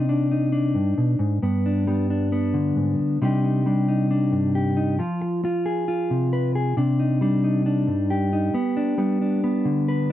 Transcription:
0, 0, Header, 1, 3, 480
1, 0, Start_track
1, 0, Key_signature, -3, "minor"
1, 0, Tempo, 445434
1, 1528, Time_signature, 4, 2, 24, 8
1, 10905, End_track
2, 0, Start_track
2, 0, Title_t, "Clean electric guitar"
2, 0, Program_c, 0, 27
2, 0, Note_on_c, 0, 48, 64
2, 0, Note_on_c, 0, 63, 51
2, 97, Note_on_c, 0, 62, 59
2, 325, Note_off_c, 0, 63, 0
2, 338, Note_on_c, 0, 63, 53
2, 560, Note_off_c, 0, 62, 0
2, 565, Note_on_c, 0, 62, 53
2, 803, Note_on_c, 0, 43, 62
2, 810, Note_off_c, 0, 48, 0
2, 1045, Note_off_c, 0, 43, 0
2, 1053, Note_on_c, 0, 47, 54
2, 1280, Note_off_c, 0, 47, 0
2, 1284, Note_on_c, 0, 44, 58
2, 1508, Note_off_c, 0, 63, 0
2, 1526, Note_off_c, 0, 44, 0
2, 1536, Note_on_c, 0, 43, 64
2, 1538, Note_off_c, 0, 62, 0
2, 1542, Note_on_c, 0, 59, 55
2, 1788, Note_on_c, 0, 62, 52
2, 2014, Note_off_c, 0, 59, 0
2, 2019, Note_on_c, 0, 55, 57
2, 2027, Note_on_c, 0, 59, 55
2, 2263, Note_off_c, 0, 62, 0
2, 2267, Note_on_c, 0, 62, 50
2, 2490, Note_off_c, 0, 59, 0
2, 2503, Note_on_c, 0, 59, 50
2, 2735, Note_on_c, 0, 50, 54
2, 2974, Note_off_c, 0, 43, 0
2, 2978, Note_on_c, 0, 44, 55
2, 3216, Note_off_c, 0, 44, 0
2, 3427, Note_off_c, 0, 50, 0
2, 3430, Note_off_c, 0, 55, 0
2, 3432, Note_off_c, 0, 59, 0
2, 3462, Note_off_c, 0, 62, 0
2, 3466, Note_on_c, 0, 48, 65
2, 3474, Note_on_c, 0, 55, 54
2, 3482, Note_on_c, 0, 62, 55
2, 3493, Note_on_c, 0, 63, 53
2, 3500, Note_on_c, 0, 67, 57
2, 3694, Note_off_c, 0, 63, 0
2, 3707, Note_on_c, 0, 63, 45
2, 3930, Note_off_c, 0, 55, 0
2, 3938, Note_off_c, 0, 62, 0
2, 3943, Note_on_c, 0, 55, 55
2, 3951, Note_on_c, 0, 62, 56
2, 4172, Note_off_c, 0, 63, 0
2, 4185, Note_on_c, 0, 63, 49
2, 4412, Note_off_c, 0, 62, 0
2, 4425, Note_on_c, 0, 62, 56
2, 4655, Note_on_c, 0, 43, 54
2, 4892, Note_off_c, 0, 67, 0
2, 4905, Note_on_c, 0, 67, 55
2, 5125, Note_off_c, 0, 63, 0
2, 5137, Note_on_c, 0, 63, 55
2, 5349, Note_off_c, 0, 63, 0
2, 5353, Note_off_c, 0, 55, 0
2, 5354, Note_off_c, 0, 62, 0
2, 5375, Note_on_c, 0, 53, 61
2, 5376, Note_off_c, 0, 43, 0
2, 5380, Note_off_c, 0, 67, 0
2, 5382, Note_off_c, 0, 48, 0
2, 5382, Note_on_c, 0, 65, 53
2, 5858, Note_off_c, 0, 65, 0
2, 5869, Note_on_c, 0, 65, 55
2, 6096, Note_on_c, 0, 68, 54
2, 6324, Note_off_c, 0, 65, 0
2, 6337, Note_on_c, 0, 65, 56
2, 6580, Note_on_c, 0, 48, 55
2, 6815, Note_off_c, 0, 68, 0
2, 6819, Note_on_c, 0, 71, 52
2, 7057, Note_off_c, 0, 71, 0
2, 7062, Note_on_c, 0, 68, 60
2, 7268, Note_off_c, 0, 65, 0
2, 7271, Note_off_c, 0, 68, 0
2, 7282, Note_off_c, 0, 48, 0
2, 7295, Note_off_c, 0, 53, 0
2, 7295, Note_on_c, 0, 48, 67
2, 7302, Note_on_c, 0, 62, 56
2, 7538, Note_on_c, 0, 63, 49
2, 7770, Note_on_c, 0, 55, 58
2, 7776, Note_off_c, 0, 62, 0
2, 7780, Note_on_c, 0, 62, 58
2, 8005, Note_off_c, 0, 63, 0
2, 8018, Note_on_c, 0, 63, 51
2, 8249, Note_off_c, 0, 62, 0
2, 8253, Note_on_c, 0, 62, 55
2, 8485, Note_on_c, 0, 43, 62
2, 8493, Note_off_c, 0, 48, 0
2, 8732, Note_on_c, 0, 67, 57
2, 8961, Note_off_c, 0, 63, 0
2, 8974, Note_on_c, 0, 63, 56
2, 9185, Note_off_c, 0, 63, 0
2, 9187, Note_off_c, 0, 43, 0
2, 9202, Note_off_c, 0, 62, 0
2, 9207, Note_on_c, 0, 59, 59
2, 9447, Note_on_c, 0, 62, 51
2, 9667, Note_off_c, 0, 59, 0
2, 9670, Note_off_c, 0, 55, 0
2, 9675, Note_on_c, 0, 55, 57
2, 9679, Note_on_c, 0, 59, 56
2, 9918, Note_off_c, 0, 62, 0
2, 9931, Note_on_c, 0, 62, 47
2, 10156, Note_off_c, 0, 59, 0
2, 10169, Note_on_c, 0, 59, 56
2, 10402, Note_on_c, 0, 50, 58
2, 10646, Note_off_c, 0, 67, 0
2, 10652, Note_on_c, 0, 71, 57
2, 10873, Note_off_c, 0, 62, 0
2, 10905, Note_off_c, 0, 50, 0
2, 10905, Note_off_c, 0, 55, 0
2, 10905, Note_off_c, 0, 59, 0
2, 10905, Note_off_c, 0, 71, 0
2, 10905, End_track
3, 0, Start_track
3, 0, Title_t, "Muted clean electric guitar strokes"
3, 3225, Note_on_c, 9, 29, 59
3, 3332, Note_off_c, 9, 29, 0
3, 5620, Note_on_c, 9, 29, 54
3, 5728, Note_off_c, 9, 29, 0
3, 5859, Note_on_c, 9, 29, 60
3, 5966, Note_off_c, 9, 29, 0
3, 9200, Note_on_c, 9, 29, 66
3, 9308, Note_off_c, 9, 29, 0
3, 10905, End_track
0, 0, End_of_file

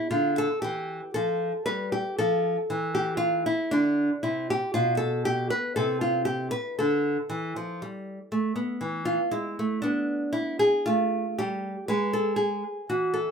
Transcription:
0, 0, Header, 1, 2, 480
1, 0, Start_track
1, 0, Tempo, 1034483
1, 1241, Time_signature, 3, 2, 24, 8
1, 3156, Tempo, 1016949
1, 6228, End_track
2, 0, Start_track
2, 0, Title_t, "Nylon-string guitar"
2, 0, Program_c, 0, 24
2, 49, Note_on_c, 0, 65, 92
2, 50, Note_on_c, 0, 50, 68
2, 163, Note_off_c, 0, 65, 0
2, 177, Note_on_c, 0, 69, 95
2, 218, Note_off_c, 0, 50, 0
2, 285, Note_off_c, 0, 69, 0
2, 287, Note_on_c, 0, 67, 95
2, 299, Note_on_c, 0, 52, 68
2, 463, Note_off_c, 0, 52, 0
2, 512, Note_off_c, 0, 67, 0
2, 530, Note_on_c, 0, 69, 93
2, 538, Note_on_c, 0, 53, 71
2, 702, Note_off_c, 0, 53, 0
2, 753, Note_off_c, 0, 69, 0
2, 769, Note_on_c, 0, 71, 88
2, 771, Note_on_c, 0, 55, 74
2, 883, Note_off_c, 0, 71, 0
2, 892, Note_on_c, 0, 67, 87
2, 939, Note_off_c, 0, 55, 0
2, 1005, Note_off_c, 0, 67, 0
2, 1014, Note_on_c, 0, 69, 94
2, 1018, Note_on_c, 0, 53, 73
2, 1186, Note_off_c, 0, 53, 0
2, 1252, Note_on_c, 0, 52, 79
2, 1357, Note_off_c, 0, 69, 0
2, 1367, Note_on_c, 0, 67, 91
2, 1469, Note_off_c, 0, 67, 0
2, 1471, Note_on_c, 0, 65, 93
2, 1597, Note_off_c, 0, 52, 0
2, 1599, Note_off_c, 0, 65, 0
2, 1606, Note_on_c, 0, 64, 90
2, 1723, Note_on_c, 0, 62, 98
2, 1725, Note_off_c, 0, 64, 0
2, 1729, Note_on_c, 0, 50, 73
2, 1899, Note_off_c, 0, 50, 0
2, 1952, Note_off_c, 0, 62, 0
2, 1962, Note_on_c, 0, 64, 76
2, 1966, Note_on_c, 0, 48, 71
2, 2081, Note_off_c, 0, 64, 0
2, 2089, Note_on_c, 0, 67, 98
2, 2135, Note_off_c, 0, 48, 0
2, 2197, Note_off_c, 0, 67, 0
2, 2199, Note_on_c, 0, 65, 97
2, 2203, Note_on_c, 0, 47, 77
2, 2306, Note_off_c, 0, 65, 0
2, 2308, Note_on_c, 0, 69, 99
2, 2433, Note_off_c, 0, 69, 0
2, 2437, Note_on_c, 0, 67, 101
2, 2547, Note_off_c, 0, 47, 0
2, 2552, Note_off_c, 0, 67, 0
2, 2554, Note_on_c, 0, 71, 91
2, 2670, Note_off_c, 0, 71, 0
2, 2672, Note_on_c, 0, 69, 104
2, 2676, Note_on_c, 0, 48, 80
2, 2681, Note_on_c, 0, 64, 50
2, 2788, Note_off_c, 0, 69, 0
2, 2790, Note_on_c, 0, 65, 90
2, 2899, Note_off_c, 0, 65, 0
2, 2901, Note_on_c, 0, 67, 96
2, 3018, Note_off_c, 0, 67, 0
2, 3020, Note_on_c, 0, 71, 102
2, 3021, Note_off_c, 0, 48, 0
2, 3147, Note_off_c, 0, 71, 0
2, 3149, Note_on_c, 0, 69, 88
2, 3155, Note_on_c, 0, 50, 72
2, 3328, Note_off_c, 0, 50, 0
2, 3382, Note_off_c, 0, 69, 0
2, 3389, Note_on_c, 0, 52, 72
2, 3506, Note_off_c, 0, 52, 0
2, 3516, Note_on_c, 0, 53, 67
2, 3629, Note_off_c, 0, 53, 0
2, 3636, Note_on_c, 0, 55, 75
2, 3807, Note_off_c, 0, 55, 0
2, 3872, Note_on_c, 0, 57, 72
2, 3982, Note_off_c, 0, 57, 0
2, 3984, Note_on_c, 0, 59, 69
2, 4092, Note_off_c, 0, 64, 0
2, 4100, Note_off_c, 0, 59, 0
2, 4103, Note_on_c, 0, 52, 72
2, 4219, Note_on_c, 0, 65, 88
2, 4276, Note_off_c, 0, 52, 0
2, 4342, Note_on_c, 0, 56, 71
2, 4342, Note_on_c, 0, 64, 82
2, 4343, Note_off_c, 0, 65, 0
2, 4458, Note_off_c, 0, 56, 0
2, 4472, Note_on_c, 0, 57, 69
2, 4574, Note_off_c, 0, 64, 0
2, 4580, Note_on_c, 0, 62, 93
2, 4584, Note_off_c, 0, 57, 0
2, 4587, Note_on_c, 0, 59, 70
2, 4816, Note_off_c, 0, 62, 0
2, 4819, Note_on_c, 0, 64, 93
2, 4937, Note_off_c, 0, 59, 0
2, 4944, Note_off_c, 0, 64, 0
2, 4946, Note_on_c, 0, 68, 95
2, 5070, Note_off_c, 0, 68, 0
2, 5070, Note_on_c, 0, 65, 93
2, 5078, Note_on_c, 0, 57, 73
2, 5249, Note_off_c, 0, 57, 0
2, 5302, Note_off_c, 0, 65, 0
2, 5319, Note_on_c, 0, 67, 88
2, 5324, Note_on_c, 0, 55, 67
2, 5492, Note_off_c, 0, 55, 0
2, 5546, Note_off_c, 0, 67, 0
2, 5554, Note_on_c, 0, 71, 91
2, 5559, Note_on_c, 0, 56, 71
2, 5671, Note_off_c, 0, 71, 0
2, 5673, Note_on_c, 0, 69, 88
2, 5779, Note_off_c, 0, 69, 0
2, 5781, Note_on_c, 0, 68, 82
2, 5903, Note_off_c, 0, 56, 0
2, 6018, Note_off_c, 0, 68, 0
2, 6032, Note_on_c, 0, 52, 63
2, 6032, Note_on_c, 0, 66, 84
2, 6146, Note_on_c, 0, 69, 81
2, 6153, Note_off_c, 0, 66, 0
2, 6206, Note_off_c, 0, 52, 0
2, 6228, Note_off_c, 0, 69, 0
2, 6228, End_track
0, 0, End_of_file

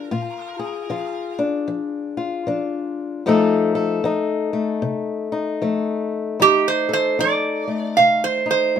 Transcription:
0, 0, Header, 1, 3, 480
1, 0, Start_track
1, 0, Tempo, 785340
1, 72, Time_signature, 4, 2, 24, 8
1, 5377, End_track
2, 0, Start_track
2, 0, Title_t, "Resonator guitar played with a steel bar"
2, 0, Program_c, 0, 25
2, 0, Note_on_c, 0, 70, 79
2, 852, Note_off_c, 0, 70, 0
2, 3924, Note_on_c, 0, 67, 104
2, 4073, Note_off_c, 0, 67, 0
2, 4082, Note_on_c, 0, 72, 81
2, 4231, Note_off_c, 0, 72, 0
2, 4238, Note_on_c, 0, 72, 83
2, 4390, Note_off_c, 0, 72, 0
2, 4404, Note_on_c, 0, 74, 88
2, 4864, Note_off_c, 0, 74, 0
2, 4870, Note_on_c, 0, 77, 85
2, 5026, Note_off_c, 0, 77, 0
2, 5036, Note_on_c, 0, 72, 79
2, 5189, Note_off_c, 0, 72, 0
2, 5199, Note_on_c, 0, 72, 80
2, 5377, Note_off_c, 0, 72, 0
2, 5377, End_track
3, 0, Start_track
3, 0, Title_t, "Steel-string acoustic guitar"
3, 0, Program_c, 1, 25
3, 0, Note_on_c, 1, 65, 55
3, 69, Note_on_c, 1, 46, 84
3, 70, Note_off_c, 1, 65, 0
3, 72, Note_on_c, 1, 65, 62
3, 363, Note_on_c, 1, 68, 66
3, 512, Note_off_c, 1, 46, 0
3, 548, Note_on_c, 1, 53, 67
3, 550, Note_off_c, 1, 65, 0
3, 552, Note_on_c, 1, 65, 58
3, 847, Note_on_c, 1, 62, 56
3, 992, Note_off_c, 1, 53, 0
3, 1024, Note_on_c, 1, 53, 61
3, 1325, Note_off_c, 1, 65, 0
3, 1328, Note_on_c, 1, 65, 63
3, 1470, Note_off_c, 1, 53, 0
3, 1507, Note_off_c, 1, 62, 0
3, 1508, Note_on_c, 1, 53, 59
3, 1514, Note_on_c, 1, 62, 54
3, 1952, Note_off_c, 1, 53, 0
3, 1967, Note_off_c, 1, 68, 0
3, 1970, Note_off_c, 1, 62, 0
3, 1992, Note_on_c, 1, 41, 84
3, 1995, Note_on_c, 1, 53, 75
3, 1998, Note_on_c, 1, 57, 73
3, 2000, Note_off_c, 1, 65, 0
3, 2002, Note_on_c, 1, 63, 66
3, 2008, Note_on_c, 1, 69, 77
3, 2289, Note_off_c, 1, 69, 0
3, 2292, Note_on_c, 1, 69, 74
3, 2434, Note_off_c, 1, 41, 0
3, 2466, Note_off_c, 1, 53, 0
3, 2468, Note_on_c, 1, 53, 76
3, 2474, Note_off_c, 1, 63, 0
3, 2476, Note_on_c, 1, 63, 66
3, 2767, Note_off_c, 1, 57, 0
3, 2769, Note_on_c, 1, 57, 54
3, 2912, Note_off_c, 1, 53, 0
3, 2946, Note_on_c, 1, 48, 74
3, 3244, Note_off_c, 1, 63, 0
3, 3252, Note_on_c, 1, 63, 59
3, 3391, Note_off_c, 1, 48, 0
3, 3429, Note_off_c, 1, 57, 0
3, 3433, Note_on_c, 1, 53, 58
3, 3436, Note_on_c, 1, 57, 61
3, 3875, Note_off_c, 1, 53, 0
3, 3892, Note_off_c, 1, 63, 0
3, 3892, Note_off_c, 1, 69, 0
3, 3909, Note_on_c, 1, 41, 88
3, 3913, Note_on_c, 1, 63, 70
3, 4210, Note_on_c, 1, 69, 65
3, 4353, Note_off_c, 1, 41, 0
3, 4387, Note_off_c, 1, 63, 0
3, 4394, Note_on_c, 1, 53, 65
3, 4396, Note_on_c, 1, 63, 60
3, 4684, Note_off_c, 1, 57, 0
3, 4691, Note_on_c, 1, 57, 46
3, 4836, Note_off_c, 1, 53, 0
3, 4875, Note_on_c, 1, 48, 60
3, 5162, Note_off_c, 1, 63, 0
3, 5169, Note_on_c, 1, 63, 56
3, 5317, Note_off_c, 1, 48, 0
3, 5354, Note_on_c, 1, 45, 67
3, 5377, Note_off_c, 1, 45, 0
3, 5377, Note_off_c, 1, 57, 0
3, 5377, Note_off_c, 1, 63, 0
3, 5377, Note_off_c, 1, 69, 0
3, 5377, End_track
0, 0, End_of_file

